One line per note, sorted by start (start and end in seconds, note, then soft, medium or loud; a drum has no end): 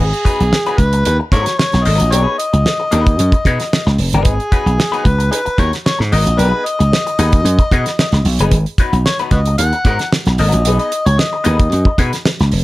0.00 0.11 G#1 medium
0.00 0.80 G#4 medium
0.13 closed hi-hat soft
0.25 0.42 F#3 medium
0.25 0.43 B3 medium
0.25 0.43 D#4 medium
0.25 0.43 B4 loud
0.25 kick medium
0.25 closed hi-hat medium
0.40 0.51 B1 medium
0.40 closed hi-hat soft
0.52 muted hollow-body jazz guitar stroke soft
0.52 snare medium
0.66 0.78 F#3 medium
0.66 0.79 B3 medium
0.66 0.79 D#4 medium
0.66 0.80 B4 medium
0.66 closed hi-hat soft
0.78 1.02 C#2 medium
0.78 1.04 B4 medium
0.78 muted hollow-body jazz guitar stroke soft
0.78 kick medium
0.78 closed hi-hat medium
0.93 muted hollow-body jazz guitar stroke medium
0.93 closed hi-hat medium
1.05 1.18 D#2 medium
1.05 1.17 B4 loud
1.05 muted hollow-body jazz guitar stroke soft
1.05 closed hi-hat medium
1.20 muted hollow-body jazz guitar stroke soft
1.32 1.44 G#2 loud
1.32 1.53 F#3 medium
1.32 1.47 B3 medium
1.32 1.46 D#4 medium
1.32 1.46 A#4 medium
1.32 1.57 C#5 loud
1.32 kick medium
1.32 closed hi-hat medium
1.46 muted hollow-body jazz guitar stroke medium
1.46 snare soft
1.46 closed hi-hat medium
1.58 1.86 C#5 loud
1.58 snare loud
1.72 1.84 B1 medium
1.72 muted hollow-body jazz guitar stroke soft
1.72 snare soft
1.72 closed hi-hat soft
1.84 1.98 G#1 medium
1.84 2.06 F#3 medium
1.84 2.00 B3 medium
1.84 2.00 D#4 medium
1.84 1.99 A#4 medium
1.84 2.13 D#5 loud
1.84 open hi-hat medium
2.00 2.13 A#1 medium
2.00 muted hollow-body jazz guitar stroke soft
2.00 closed hi-hat medium
2.12 2.25 B1 loud
2.12 2.37 B3 medium
2.12 2.37 D#4 medium
2.12 2.37 G#4 medium
2.12 2.37 B4 medium
2.12 2.38 C#5 loud
2.12 closed hi-hat medium
2.38 3.94 D#5 loud
2.38 closed hi-hat medium
2.53 2.64 C#2 medium
2.53 muted hollow-body jazz guitar stroke soft
2.53 closed hi-hat soft
2.66 muted hollow-body jazz guitar stroke soft
2.66 snare medium
2.80 muted hollow-body jazz guitar stroke medium
2.91 3.16 D#2 loud
2.91 3.12 B3 medium
2.91 3.06 D#4 loud
2.91 3.05 G#4 medium
2.91 3.05 B4 loud
2.91 closed hi-hat medium
3.06 muted hollow-body jazz guitar stroke soft
3.06 kick loud
3.06 closed hi-hat medium
3.19 3.32 F#2 medium
3.19 muted hollow-body jazz guitar stroke soft
3.19 closed hi-hat loud
3.32 muted hollow-body jazz guitar stroke soft
3.32 kick loud
3.32 closed hi-hat soft
3.45 3.58 B2 loud
3.45 3.63 B3 medium
3.45 3.60 D#4 medium
3.45 3.59 G#4 medium
3.45 3.59 B4 medium
3.45 kick medium
3.45 closed hi-hat medium
3.60 muted hollow-body jazz guitar stroke soft
3.60 snare soft
3.60 closed hi-hat soft
3.73 muted hollow-body jazz guitar stroke soft
3.73 snare loud
3.87 3.97 C#2 medium
3.87 muted hollow-body jazz guitar stroke soft
3.87 snare soft
3.98 4.11 F1 medium
3.98 open hi-hat medium
4.13 4.24 F#1 medium
4.13 4.34 B3 medium
4.13 4.34 D#4 medium
4.13 4.33 G#4 medium
4.13 4.33 B4 medium
4.13 closed hi-hat medium
4.25 4.38 G#1 loud
4.25 5.07 G#4 medium
4.25 kick loud
4.25 closed hi-hat medium
4.40 closed hi-hat soft
4.52 4.69 F#3 medium
4.52 4.70 B3 medium
4.52 4.70 D#4 medium
4.52 4.70 B4 medium
4.52 kick medium
4.52 closed hi-hat medium
4.66 4.77 B1 medium
4.66 closed hi-hat soft
4.78 muted hollow-body jazz guitar stroke soft
4.78 snare loud
4.92 5.04 F#3 medium
4.92 5.05 B3 medium
4.92 5.05 D#4 medium
4.92 5.06 B4 medium
4.92 closed hi-hat soft
5.05 5.29 C#2 loud
5.05 5.30 B4 medium
5.05 muted hollow-body jazz guitar stroke soft
5.05 kick medium
5.05 closed hi-hat medium
5.19 muted hollow-body jazz guitar stroke medium
5.19 closed hi-hat medium
5.31 5.40 D#4 medium
5.31 5.40 G#4 medium
5.31 5.56 B4 medium
5.31 muted hollow-body jazz guitar stroke soft
5.31 closed hi-hat medium
5.45 muted hollow-body jazz guitar stroke medium
5.45 muted slap bass stroke soft
5.45 closed hi-hat soft
5.58 5.71 D#2 loud
5.58 5.76 F#3 medium
5.58 5.72 B3 medium
5.58 5.72 D#4 medium
5.58 5.71 A#4 medium
5.58 5.71 C#5 loud
5.58 kick medium
5.58 closed hi-hat medium
5.72 muted hollow-body jazz guitar stroke soft
5.72 snare soft
5.72 closed hi-hat medium
5.86 5.98 C#5 loud
5.86 snare loud
5.99 6.11 G#2 medium
5.99 muted hollow-body jazz guitar stroke medium
5.99 snare soft
6.12 6.25 G#1 medium
6.12 6.29 F#3 medium
6.12 6.26 B3 medium
6.12 6.25 D#4 medium
6.12 6.25 A#4 medium
6.12 6.40 D#5 loud
6.12 open hi-hat medium
6.26 6.37 A#1 medium
6.26 muted hollow-body jazz guitar stroke medium
6.26 closed hi-hat medium
6.37 6.51 B1 medium
6.37 6.48 A#3 medium
6.37 6.49 D4 medium
6.37 6.63 G#4 loud
6.37 6.67 B4 loud
6.37 6.63 B4 loud
6.37 closed hi-hat medium
6.48 6.63 B3 medium
6.48 6.63 D#4 medium
6.65 8.25 D#5 loud
6.65 closed hi-hat medium
6.79 6.91 C#2 medium
6.79 muted hollow-body jazz guitar stroke soft
6.79 closed hi-hat soft
6.92 muted hollow-body jazz guitar stroke soft
6.92 snare medium
7.07 muted hollow-body jazz guitar stroke soft
7.07 closed hi-hat soft
7.19 7.42 D#2 medium
7.19 7.36 B3 medium
7.19 7.33 D#4 loud
7.19 7.33 G#4 medium
7.19 7.32 B4 loud
7.19 closed hi-hat medium
7.33 muted hollow-body jazz guitar stroke soft
7.33 kick loud
7.33 closed hi-hat medium
7.45 7.57 F#2 medium
7.45 closed hi-hat medium
7.59 muted hollow-body jazz guitar stroke soft
7.59 kick medium
7.59 closed hi-hat soft
7.72 7.84 B2 loud
7.72 7.89 B3 medium
7.72 7.86 D#4 medium
7.72 7.86 G#4 medium
7.72 7.86 B4 medium
7.72 kick medium
7.72 closed hi-hat medium
7.86 muted hollow-body jazz guitar stroke soft
7.86 snare soft
7.86 closed hi-hat medium
7.99 muted hollow-body jazz guitar stroke soft
7.99 snare loud
8.12 8.24 C#2 medium
8.12 muted hollow-body jazz guitar stroke medium
8.12 snare soft
8.12 closed hi-hat soft
8.25 8.38 B1 medium
8.25 open hi-hat medium
8.39 8.51 F#1 medium
8.39 8.57 B3 medium
8.39 8.57 D#4 medium
8.39 8.56 G#4 medium
8.39 8.56 B4 medium
8.39 closed hi-hat medium
8.51 8.64 G#1 medium
8.51 kick loud
8.51 closed hi-hat medium
8.66 closed hi-hat soft
8.78 8.96 F#3 medium
8.78 8.97 B3 medium
8.78 8.97 D#4 medium
8.78 8.97 B4 medium
8.78 kick medium
8.78 closed hi-hat medium
8.93 9.04 B1 medium
8.93 closed hi-hat soft
9.05 9.17 C#5 medium
9.05 muted hollow-body jazz guitar stroke soft
9.05 snare medium
9.19 9.31 F#3 medium
9.19 9.31 B3 medium
9.19 9.32 D#4 medium
9.19 9.33 B4 medium
9.19 closed hi-hat soft
9.31 9.55 C#2 medium
9.31 9.40 F#4 medium
9.31 9.40 B4 medium
9.31 9.57 D#5 medium
9.31 muted hollow-body jazz guitar stroke soft
9.31 kick medium
9.31 closed hi-hat medium
9.46 muted hollow-body jazz guitar stroke medium
9.46 closed hi-hat medium
9.58 9.71 D#2 loud
9.58 10.08 F#5 loud
9.58 muted hollow-body jazz guitar stroke soft
9.58 closed hi-hat loud
9.73 muted hollow-body jazz guitar stroke soft
9.73 closed hi-hat soft
9.85 9.97 G#2 loud
9.85 10.03 F#3 medium
9.85 10.00 B3 medium
9.85 10.00 D#4 medium
9.85 9.99 A#4 medium
9.85 kick medium
9.85 closed hi-hat medium
9.99 muted hollow-body jazz guitar stroke soft
9.99 snare soft
9.99 closed hi-hat soft
10.13 snare loud
10.25 10.37 B1 medium
10.25 muted hollow-body jazz guitar stroke soft
10.25 snare soft
10.25 closed hi-hat soft
10.38 10.51 G#1 loud
10.38 10.59 F#3 medium
10.38 10.54 B3 medium
10.38 10.53 D#4 medium
10.38 10.52 A#4 medium
10.38 10.77 D#5 loud
10.38 open hi-hat medium
10.52 10.65 A#1 medium
10.52 muted hollow-body jazz guitar stroke soft
10.52 closed hi-hat medium
10.65 10.78 B1 loud
10.65 10.91 B3 medium
10.65 10.91 D#4 medium
10.65 10.91 G#4 medium
10.65 10.91 B4 medium
10.65 closed hi-hat medium
10.79 11.08 D#5 medium
10.79 closed hi-hat soft
10.92 closed hi-hat medium
11.06 11.17 C#2 medium
11.06 11.20 C#5 loud
11.06 muted hollow-body jazz guitar stroke soft
11.06 closed hi-hat soft
11.19 11.99 D#5 medium
11.19 muted hollow-body jazz guitar stroke soft
11.19 snare medium
11.33 muted hollow-body jazz guitar stroke soft
11.44 11.69 D#2 loud
11.44 11.62 B3 loud
11.44 11.59 D#4 medium
11.44 11.59 G#4 medium
11.44 11.58 B4 loud
11.44 closed hi-hat medium
11.59 muted hollow-body jazz guitar stroke medium
11.59 kick loud
11.59 closed hi-hat medium
11.72 11.85 F#2 medium
11.72 closed hi-hat medium
11.85 muted hollow-body jazz guitar stroke medium
11.85 kick loud
11.98 12.11 B2 loud
11.98 12.16 B3 medium
11.98 12.13 D#4 medium
11.98 12.13 G#4 medium
11.98 12.12 B4 medium
11.98 kick medium
11.98 closed hi-hat medium
12.13 muted hollow-body jazz guitar stroke soft
12.13 snare soft
12.13 closed hi-hat medium
12.25 muted hollow-body jazz guitar stroke soft
12.25 snare loud
12.39 12.51 C#2 medium
12.39 muted hollow-body jazz guitar stroke soft
12.39 snare soft
12.39 closed hi-hat soft
12.52 12.64 F1 medium
12.52 open hi-hat medium